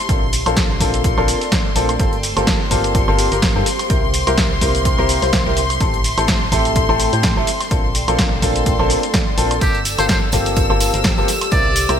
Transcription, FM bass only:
0.09 A#1
0.46 A#1
0.80 A#1
1.18 A#1
1.76 A#1
1.99 G1
2.37 G1
2.71 G1
3.08 G1
3.32 G1
3.56 G2
3.90 C2
4.27 C2
4.61 C2
4.99 C2
5.22 C2
5.46 C2
5.80 A1
6.18 A1
6.52 A1
6.89 A1
7.13 A2
7.37 A1
7.71 A#1
8.08 A#1
8.42 A#1
8.80 A#1
9.38 A#1
9.61 G1
9.99 G1
10.33 G1
10.70 G1
10.94 G1
11.18 G1
11.52 C2
11.89 C2

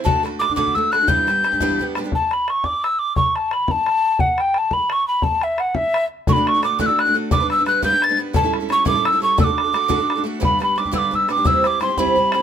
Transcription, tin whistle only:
0.05 A5
0.39 D6
0.56 D6
0.75 E6
0.92 F#6
1.08 G6
2.15 A5
2.33 B5
2.50 C#6
2.65 D6
2.84 E6
2.99 D6
3.16 C#6
3.36 A5
3.53 B5
3.68 A5 B5
4.20 F#5
4.41 G5
4.58 A5
4.73 B5
4.93 C#6
5.08 B5
5.24 A5
5.43 E5
5.60 F#5
5.76 E5
6.29 B5 C#6
6.48 C#6
6.64 D6
6.81 F#6
6.86 E6
7.00 F#6
7.32 D6
7.51 E6
7.67 F#6
7.84 G6
8.04 A6
8.36 A5
8.72 C#6
8.87 D6
9.06 E6
9.23 C#6
9.40 D6 E6
10.45 B5
10.63 B5
10.78 D6
10.95 D6 E6
11.15 E6
11.31 D6
11.47 E6
11.67 D6
11.82 C6
11.98 B5

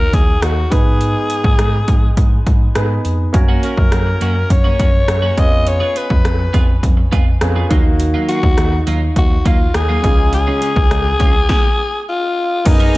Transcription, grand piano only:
Already playing: D#3 D#4 F#4 A#4 F5
0.70 G#2 B3 D#4 G#4 B4
2.75 B3 D#4 G#4 B4
3.33 A#3 C#4 F#4 A#4
5.37 B3 C#4 F4 G#4
7.41 B3 C#4 F4 G#4
7.69 D#3 A#3 D#4 F#4 F5
10.02 C#3 G#3 C#4 F4 G#4
12.65 B3 D#4 G#4 A#4

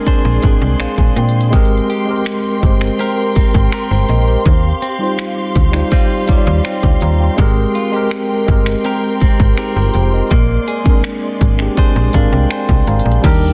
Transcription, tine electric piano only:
Already playing: G#3 C4 D4 A#4
0.41 G#3 C4 D4 D5
0.46 G#4
0.81 F5
0.99 G#5
1.17 G5
1.51 G#3 C4 G4
1.55 A#4
2.06 G#3 C4 G4
2.11 A#4
2.61 G#3 C4 G4
2.66 C5
3.91 G4 C5
4.09 A#4 D#5
4.28 G4 C5
4.99 G3 D#4 F4
5.03 C5
5.72 G3 D#4 F4
5.76 C5
6.26 G3 D#4 F4
6.31 C#5
6.38 D5
6.66 G5
7.02 F5 A#5
7.20 D5 G5
7.36 G#3 C4 G4
7.41 A#4
7.92 G#3 C4 G4
7.96 A#4
8.46 G#3 C4 G4
8.51 A#4
9.58 D#4 G#4
9.77 F4 A#4
9.95 G4 C5
10.14 A#4 D#5
10.84 G#3 C4 D4
10.89 A#4
11.57 G#3 C4 D4
11.62 G4
12.12 G#3 C4 D4 F5
12.17 A#4
12.32 G5
12.51 D5 G#5
12.87 C5 F5 A#5
13.06 G#4 D5
13.21 G3 D4 D#4
13.26 A#4

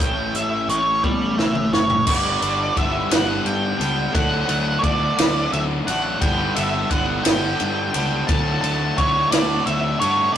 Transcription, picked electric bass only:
0.00 A1
0.35 A1
0.69 A1
1.04 A1
1.38 A1
1.73 F#1
2.07 G1
2.42 G1
2.77 G1
3.11 G1
3.45 G2
3.80 C#2
4.15 D2
4.49 D2
4.83 D2
5.19 D2
5.52 D2
5.87 A1
6.22 G1
6.56 G1
6.91 G1
7.26 G1
7.61 G2
7.95 C#2
8.29 D2
8.63 D2
8.98 D2
9.33 D2
9.67 D2
10.01 G2

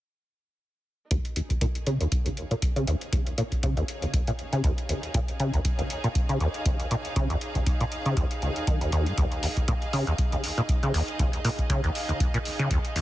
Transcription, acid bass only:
1.11 D#2
1.36 D#2
1.61 A#2
1.87 C#3
2.01 D#2
2.26 D#2
2.51 A#2
2.76 C#3
2.87 D#2
3.13 D#2
3.38 A#2
3.63 C#3
3.77 D#2
4.02 D#2
4.27 A#2
4.53 C#3
4.64 D#2
4.89 D#2
5.14 A#2
5.40 C#3
5.54 D#2
5.79 D#2
6.04 A#2
6.29 C#3
6.41 D#2
6.66 D#2
6.91 A#2
7.16 C#3
7.30 D#2
7.55 D#2
7.81 A#2
8.06 C#3
8.17 D#2
8.42 C#2
8.67 D#3
8.81 D#2
8.93 D#2
9.07 G#2
9.18 D#2
9.43 D#2
9.68 A#2
9.93 C#3
10.07 D#2
10.33 D#2
10.58 A#2
10.83 C#3
10.94 D#2
11.19 D#2
11.45 A#2
11.70 C#3
11.84 D#2
12.09 D#2
12.34 A#2
12.59 C#3
12.71 D#2
12.96 D#2

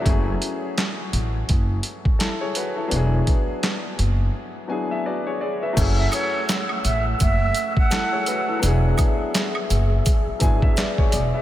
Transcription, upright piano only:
Already playing: B4 E5
0.01 F#3 A3
0.06 C#4 E4
0.10 G#4
2.19 E4 A4
2.41 G#4 C#5
2.56 F#4 B4
2.76 E4 A4
2.88 F#3 B3
2.92 D4 E4
2.96 G#4
4.68 F#3 B3 D4 E4 G#5
4.72 G#4
4.91 E5
5.06 F#4 B4 D5
5.27 G#4 C#5
5.41 G#4 D5
5.62 B4 E5
5.73 F#3 A3
5.77 C#4 E4
5.81 G#4
7.90 E4 A4
8.12 G#4 C#5
8.28 F#4 B4
8.48 E4 A4
8.59 F#3 B3
8.63 D4 E4
8.67 G#4
10.39 F#3 B3 D4 E4 G#5
10.43 G#4
10.63 E5
10.77 F#4 B4 D5
10.98 G#4 C#5
11.12 G#4 D5
11.34 B4 E5

